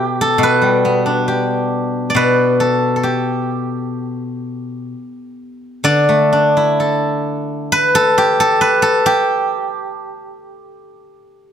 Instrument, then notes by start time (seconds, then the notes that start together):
guzheng
Already playing: B2 G4 A4 B4 D5
0.21 A4
0.38 B2
0.43 B4
0.62 G3
0.85 B3
1.06 D4
1.28 G4
2.10 D5
2.15 B2 B4
2.60 A4
2.96 A4
3.03 G4
5.84 D3 D5
6.09 A3
6.33 D4
6.57 E4
6.80 A4
7.72 B4
7.95 A4
8.18 G4
8.40 A4
8.61 B4
8.82 A4
9.06 G4